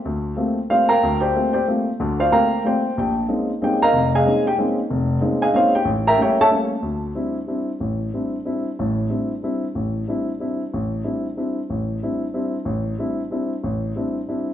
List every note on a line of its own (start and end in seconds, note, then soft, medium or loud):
0.05 0.32 D2 medium
0.36 0.57 A3 medium
0.36 0.57 A#3 medium
0.36 0.58 C4 medium
0.36 0.57 F4 medium
0.36 0.58 G4 medium
0.70 0.90 A3 medium
0.70 0.91 A#3 medium
0.70 0.91 C4 medium
0.70 0.91 F4 medium
0.70 0.91 G4 medium
0.70 0.89 C5 medium
0.70 0.89 D5 medium
0.70 0.88 F5 medium
0.89 1.19 A#4 loud
0.89 1.19 F5 medium
0.89 1.19 G5 medium
0.89 1.19 A#5 loud
1.03 1.30 D2 medium
1.20 1.35 G4 medium
1.20 1.51 C5 medium
1.20 1.51 D5 medium
1.20 1.51 G5 medium
1.36 1.56 A3 medium
1.36 1.56 A#3 medium
1.36 1.56 C4 medium
1.36 1.56 F4 medium
1.36 1.53 G4 medium
1.53 1.66 G4 medium
1.53 1.65 C5 medium
1.53 1.66 D5 medium
1.53 1.65 G5 medium
1.68 1.88 A3 medium
1.68 1.88 A#3 medium
1.68 1.88 C4 medium
1.68 1.88 F4 medium
1.68 1.88 G4 medium
2.00 2.27 D2 medium
2.00 2.27 D3 medium
2.20 2.31 F4 medium
2.20 2.31 C5 medium
2.20 2.31 D5 medium
2.20 2.31 F5 medium
2.31 2.52 A3 medium
2.31 2.52 A#3 medium
2.31 2.52 C4 medium
2.31 2.52 F4 medium
2.31 2.52 G4 medium
2.31 2.62 A#4 medium
2.31 2.62 F5 medium
2.31 2.62 G5 medium
2.31 2.61 A#5 loud
2.64 2.85 A3 medium
2.64 2.85 A#3 medium
2.64 2.85 C4 medium
2.64 2.85 F4 medium
2.64 2.85 G4 medium
2.64 2.95 C5 medium
2.64 2.95 D5 medium
2.64 2.95 G5 medium
2.98 3.24 A#1 medium
2.98 3.16 G4 medium
2.98 3.16 G5 medium
3.28 3.49 G#3 medium
3.28 3.49 A#3 medium
3.28 3.49 C4 medium
3.28 3.49 C#4 medium
3.28 3.49 D#4 medium
3.62 3.82 G#3 medium
3.62 3.82 A#3 medium
3.62 3.82 C4 medium
3.62 3.82 C#4 medium
3.62 3.82 D#4 medium
3.62 3.81 G4 medium
3.62 3.81 G5 medium
3.82 4.12 A#4 medium
3.82 4.12 D#5 medium
3.82 4.11 F5 medium
3.82 4.11 A#5 loud
3.93 4.20 F1 medium
4.15 4.44 G#4 medium
4.15 4.44 D#5 medium
4.15 4.44 F5 medium
4.15 4.44 G#5 loud
4.25 4.46 G#3 medium
4.25 4.46 A#3 medium
4.25 4.46 C4 medium
4.25 4.46 C#4 medium
4.25 4.46 D#4 medium
4.47 4.54 G4 medium
4.47 4.54 G5 loud
4.58 4.79 G#3 medium
4.58 4.78 A#3 medium
4.58 4.78 C4 medium
4.58 4.79 C#4 medium
4.58 4.79 D#4 medium
4.90 5.17 F1 medium
5.21 5.42 G#3 medium
5.21 5.42 A#3 medium
5.21 5.42 C4 medium
5.21 5.42 C#4 medium
5.21 5.42 D#4 medium
5.42 5.54 G#4 medium
5.42 5.54 D#5 medium
5.42 5.54 F5 medium
5.42 5.54 G#5 loud
5.53 5.74 G#3 medium
5.53 5.75 A#3 medium
5.53 5.75 C4 medium
5.53 5.74 C#4 medium
5.53 5.75 D#4 medium
5.53 5.74 F4 medium
5.53 5.74 C5 medium
5.53 5.74 C#5 medium
5.53 5.74 F5 medium
5.75 5.86 G4 medium
5.75 5.86 G5 loud
5.85 6.13 A1 medium
6.07 6.19 A#4 medium
6.07 6.19 E5 medium
6.07 6.19 G5 medium
6.07 6.19 A#5 loud
6.17 6.39 G3 medium
6.17 6.39 A3 medium
6.17 6.39 A#3 medium
6.17 6.39 C#4 medium
6.22 6.40 G4 medium
6.22 6.40 C#5 medium
6.22 6.39 G5 loud
6.41 6.48 A4 medium
6.41 6.48 C#5 medium
6.41 6.48 E5 medium
6.41 6.48 A5 loud
6.50 6.72 G3 medium
6.50 6.72 A3 medium
6.50 6.72 A#3 medium
6.50 6.72 C#4 medium
6.82 7.10 D2 medium
7.15 7.36 G3 medium
7.15 7.36 C4 soft
7.15 7.37 D4 soft
7.15 7.37 E4 medium
7.47 7.69 G3 medium
7.47 7.69 C4 soft
7.47 7.69 D4 soft
7.47 7.69 E4 medium
7.80 8.08 A1 medium
8.14 8.34 G3 medium
8.14 8.34 C4 soft
8.14 8.35 D4 soft
8.14 8.35 E4 medium
8.45 8.66 G3 medium
8.45 8.66 C4 soft
8.45 8.67 D4 soft
8.45 8.67 E4 medium
8.79 9.06 A1 medium
8.79 9.06 A2 medium
9.10 9.31 G3 medium
9.10 9.31 C4 soft
9.10 9.31 D4 soft
9.10 9.31 E4 medium
9.43 9.64 G3 medium
9.43 9.64 C4 soft
9.43 9.64 D4 medium
9.43 9.64 E4 medium
9.75 10.03 A1 medium
10.08 10.28 G3 medium
10.08 10.29 C4 soft
10.08 10.29 D4 soft
10.08 10.29 E4 medium
10.40 10.61 G3 medium
10.40 10.61 C4 soft
10.40 10.61 D4 soft
10.40 10.61 E4 medium
10.73 11.00 A1 medium
11.04 11.25 G3 medium
11.04 11.25 C4 soft
11.04 11.25 D4 soft
11.04 11.25 E4 medium
11.37 11.58 G3 medium
11.37 11.58 C4 soft
11.37 11.58 D4 soft
11.37 11.58 E4 medium
11.70 11.97 A1 medium
12.03 12.23 G3 medium
12.03 12.23 C4 soft
12.03 12.23 D4 soft
12.03 12.23 E4 medium
12.34 12.55 G3 medium
12.34 12.55 C4 soft
12.34 12.55 D4 soft
12.34 12.55 E4 medium
12.65 12.93 A1 medium
12.98 13.19 G3 medium
12.98 13.20 C4 soft
12.98 13.20 D4 soft
12.98 13.20 E4 medium
13.31 13.52 G3 medium
13.31 13.52 C4 soft
13.31 13.52 D4 medium
13.31 13.52 E4 medium
13.63 13.91 A1 medium
13.96 14.17 G3 medium
13.96 14.17 C4 soft
13.96 14.17 D4 soft
13.96 14.17 E4 medium
14.29 14.49 G3 medium
14.29 14.49 C4 soft
14.29 14.49 D4 soft
14.29 14.49 E4 medium